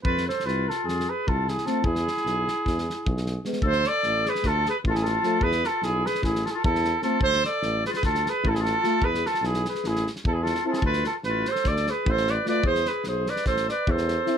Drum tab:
SD |-oooo-o-oo----ooo-|-oooo-o-ooo--oo-oo|-oo-o-ooo-o--oo-o-|-oo-o-ooooo--oo-o-|
BD |o-----------o-----|o-------o---o-----|o-------o---o-----|o-------o---o-----|

SD |-oo-o-ooooo--oo-o-|-ooooooooooo--oo-o|-oo-o-ooooo--oo-o-|-oo-o-ooooo--oo-o-|
BD |o-------o---o-----|o-----------o-----|o-------o---o-----|o-------o---o-----|